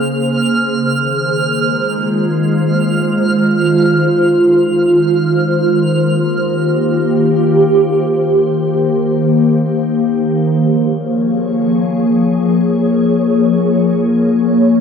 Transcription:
0, 0, Header, 1, 3, 480
1, 0, Start_track
1, 0, Tempo, 500000
1, 14214, End_track
2, 0, Start_track
2, 0, Title_t, "Synth texture"
2, 0, Program_c, 0, 99
2, 0, Note_on_c, 0, 89, 87
2, 5473, Note_off_c, 0, 89, 0
2, 14214, End_track
3, 0, Start_track
3, 0, Title_t, "Ambient pad"
3, 0, Program_c, 1, 92
3, 0, Note_on_c, 1, 49, 69
3, 0, Note_on_c, 1, 58, 73
3, 0, Note_on_c, 1, 68, 70
3, 0, Note_on_c, 1, 72, 67
3, 876, Note_off_c, 1, 49, 0
3, 884, Note_on_c, 1, 51, 77
3, 1150, Note_on_c, 1, 56, 83
3, 1526, Note_on_c, 1, 65, 80
3, 1978, Note_off_c, 1, 58, 0
3, 2706, Note_off_c, 1, 68, 0
3, 5479, Note_off_c, 1, 56, 0
3, 5670, Note_on_c, 1, 58, 85
3, 5997, Note_on_c, 1, 67, 71
3, 7322, Note_off_c, 1, 65, 0
3, 10074, Note_on_c, 1, 53, 87
3, 10077, Note_off_c, 1, 67, 0
3, 10088, Note_off_c, 1, 51, 0
3, 10089, Note_off_c, 1, 72, 0
3, 10243, Note_on_c, 1, 73, 73
3, 10423, Note_on_c, 1, 68, 73
3, 14214, Note_off_c, 1, 53, 0
3, 14214, Note_off_c, 1, 58, 0
3, 14214, Note_off_c, 1, 68, 0
3, 14214, Note_off_c, 1, 73, 0
3, 14214, End_track
0, 0, End_of_file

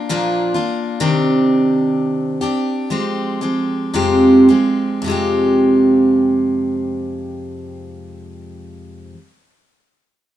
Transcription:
0, 0, Header, 1, 2, 480
1, 0, Start_track
1, 0, Tempo, 907716
1, 534, Time_signature, 4, 2, 24, 8
1, 1025, Tempo, 972447
1, 1505, Tempo, 1029160
1, 1985, Tempo, 1100917
1, 2465, Tempo, 1138520
1, 4711, End_track
2, 0, Start_track
2, 0, Title_t, "Steel-string acoustic guitar"
2, 0, Program_c, 0, 25
2, 50, Note_on_c, 0, 46, 69
2, 52, Note_on_c, 0, 53, 71
2, 55, Note_on_c, 0, 58, 68
2, 56, Note_on_c, 0, 65, 78
2, 57, Note_on_c, 0, 62, 74
2, 281, Note_off_c, 0, 65, 0
2, 285, Note_off_c, 0, 62, 0
2, 287, Note_on_c, 0, 65, 46
2, 290, Note_off_c, 0, 46, 0
2, 291, Note_off_c, 0, 53, 0
2, 291, Note_on_c, 0, 62, 45
2, 292, Note_off_c, 0, 58, 0
2, 297, Note_on_c, 0, 58, 37
2, 527, Note_off_c, 0, 62, 0
2, 529, Note_off_c, 0, 65, 0
2, 529, Note_on_c, 0, 48, 69
2, 530, Note_off_c, 0, 58, 0
2, 530, Note_on_c, 0, 51, 67
2, 532, Note_on_c, 0, 60, 77
2, 534, Note_on_c, 0, 62, 66
2, 537, Note_on_c, 0, 67, 72
2, 1252, Note_off_c, 0, 67, 0
2, 1258, Note_off_c, 0, 62, 0
2, 1258, Note_on_c, 0, 67, 52
2, 1259, Note_off_c, 0, 48, 0
2, 1260, Note_off_c, 0, 51, 0
2, 1260, Note_off_c, 0, 60, 0
2, 1264, Note_on_c, 0, 62, 47
2, 1269, Note_on_c, 0, 60, 38
2, 1500, Note_on_c, 0, 53, 48
2, 1501, Note_off_c, 0, 60, 0
2, 1503, Note_off_c, 0, 67, 0
2, 1504, Note_on_c, 0, 56, 47
2, 1505, Note_off_c, 0, 62, 0
2, 1507, Note_on_c, 0, 60, 55
2, 1510, Note_on_c, 0, 67, 55
2, 1733, Note_off_c, 0, 67, 0
2, 1735, Note_off_c, 0, 60, 0
2, 1738, Note_on_c, 0, 67, 46
2, 1739, Note_off_c, 0, 53, 0
2, 1739, Note_off_c, 0, 56, 0
2, 1741, Note_on_c, 0, 60, 38
2, 1745, Note_on_c, 0, 56, 38
2, 1748, Note_on_c, 0, 53, 35
2, 1981, Note_off_c, 0, 53, 0
2, 1982, Note_off_c, 0, 56, 0
2, 1983, Note_on_c, 0, 41, 61
2, 1984, Note_off_c, 0, 67, 0
2, 1985, Note_off_c, 0, 60, 0
2, 1985, Note_on_c, 0, 48, 63
2, 1986, Note_on_c, 0, 53, 60
2, 1988, Note_on_c, 0, 56, 57
2, 1990, Note_on_c, 0, 60, 68
2, 1991, Note_on_c, 0, 67, 69
2, 2218, Note_off_c, 0, 60, 0
2, 2218, Note_off_c, 0, 67, 0
2, 2220, Note_off_c, 0, 41, 0
2, 2220, Note_off_c, 0, 48, 0
2, 2221, Note_off_c, 0, 53, 0
2, 2222, Note_off_c, 0, 56, 0
2, 2223, Note_on_c, 0, 60, 39
2, 2223, Note_on_c, 0, 67, 42
2, 2230, Note_on_c, 0, 56, 40
2, 2231, Note_on_c, 0, 53, 34
2, 2455, Note_on_c, 0, 41, 60
2, 2465, Note_on_c, 0, 48, 58
2, 2466, Note_off_c, 0, 60, 0
2, 2466, Note_off_c, 0, 67, 0
2, 2468, Note_off_c, 0, 53, 0
2, 2469, Note_off_c, 0, 56, 0
2, 2473, Note_on_c, 0, 53, 56
2, 2480, Note_on_c, 0, 56, 60
2, 2488, Note_on_c, 0, 60, 58
2, 2494, Note_on_c, 0, 67, 63
2, 4186, Note_off_c, 0, 41, 0
2, 4197, Note_off_c, 0, 48, 0
2, 4205, Note_off_c, 0, 53, 0
2, 4211, Note_off_c, 0, 56, 0
2, 4220, Note_off_c, 0, 60, 0
2, 4226, Note_off_c, 0, 67, 0
2, 4711, End_track
0, 0, End_of_file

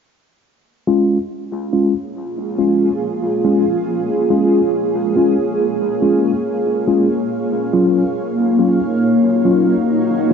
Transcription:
0, 0, Header, 1, 3, 480
1, 0, Start_track
1, 0, Tempo, 857143
1, 251, Time_signature, 4, 2, 24, 8
1, 5787, End_track
2, 0, Start_track
2, 0, Title_t, "Ambient pad"
2, 0, Program_c, 0, 92
2, 250, Note_on_c, 0, 58, 81
2, 376, Note_on_c, 0, 73, 85
2, 452, Note_on_c, 0, 68, 88
2, 478, Note_on_c, 0, 77, 75
2, 571, Note_on_c, 0, 65, 66
2, 4090, Note_off_c, 0, 65, 0
2, 4230, Note_on_c, 0, 63, 81
2, 4704, Note_on_c, 0, 66, 73
2, 5639, Note_off_c, 0, 68, 0
2, 5787, Note_off_c, 0, 58, 0
2, 5787, Note_off_c, 0, 63, 0
2, 5787, Note_off_c, 0, 66, 0
2, 5787, Note_off_c, 0, 73, 0
2, 5787, Note_off_c, 0, 77, 0
2, 5787, End_track
3, 0, Start_track
3, 0, Title_t, "Tine electric piano"
3, 0, Program_c, 1, 4
3, 489, Note_on_c, 1, 56, 70
3, 489, Note_on_c, 1, 61, 63
3, 489, Note_on_c, 1, 65, 78
3, 656, Note_off_c, 1, 56, 0
3, 656, Note_off_c, 1, 61, 0
3, 656, Note_off_c, 1, 65, 0
3, 969, Note_on_c, 1, 56, 66
3, 969, Note_on_c, 1, 61, 62
3, 969, Note_on_c, 1, 65, 71
3, 1079, Note_off_c, 1, 56, 0
3, 1079, Note_off_c, 1, 61, 0
3, 1079, Note_off_c, 1, 65, 0
3, 1448, Note_on_c, 1, 56, 63
3, 1448, Note_on_c, 1, 61, 59
3, 1448, Note_on_c, 1, 65, 72
3, 1615, Note_off_c, 1, 56, 0
3, 1615, Note_off_c, 1, 61, 0
3, 1615, Note_off_c, 1, 65, 0
3, 1929, Note_on_c, 1, 56, 68
3, 1930, Note_on_c, 1, 61, 60
3, 1930, Note_on_c, 1, 65, 72
3, 2039, Note_off_c, 1, 56, 0
3, 2040, Note_off_c, 1, 61, 0
3, 2040, Note_off_c, 1, 65, 0
3, 2410, Note_on_c, 1, 56, 71
3, 2410, Note_on_c, 1, 61, 68
3, 2410, Note_on_c, 1, 65, 81
3, 2576, Note_off_c, 1, 56, 0
3, 2576, Note_off_c, 1, 61, 0
3, 2576, Note_off_c, 1, 65, 0
3, 2891, Note_on_c, 1, 56, 66
3, 2891, Note_on_c, 1, 61, 63
3, 2891, Note_on_c, 1, 65, 72
3, 3000, Note_off_c, 1, 56, 0
3, 3000, Note_off_c, 1, 61, 0
3, 3000, Note_off_c, 1, 65, 0
3, 3371, Note_on_c, 1, 56, 66
3, 3371, Note_on_c, 1, 61, 59
3, 3371, Note_on_c, 1, 65, 72
3, 3536, Note_off_c, 1, 61, 0
3, 3537, Note_off_c, 1, 56, 0
3, 3537, Note_off_c, 1, 65, 0
3, 3851, Note_on_c, 1, 56, 69
3, 3851, Note_on_c, 1, 61, 62
3, 3851, Note_on_c, 1, 65, 74
3, 3960, Note_off_c, 1, 56, 0
3, 3960, Note_off_c, 1, 61, 0
3, 3960, Note_off_c, 1, 65, 0
3, 4331, Note_on_c, 1, 65, 82
3, 4332, Note_on_c, 1, 54, 72
3, 4332, Note_on_c, 1, 61, 68
3, 4496, Note_off_c, 1, 65, 0
3, 4497, Note_off_c, 1, 54, 0
3, 4497, Note_off_c, 1, 61, 0
3, 4812, Note_on_c, 1, 54, 67
3, 4812, Note_on_c, 1, 61, 64
3, 4812, Note_on_c, 1, 65, 75
3, 4921, Note_off_c, 1, 54, 0
3, 4921, Note_off_c, 1, 61, 0
3, 4921, Note_off_c, 1, 65, 0
3, 5293, Note_on_c, 1, 54, 67
3, 5293, Note_on_c, 1, 61, 60
3, 5293, Note_on_c, 1, 65, 74
3, 5457, Note_off_c, 1, 54, 0
3, 5457, Note_off_c, 1, 61, 0
3, 5457, Note_off_c, 1, 65, 0
3, 5787, End_track
0, 0, End_of_file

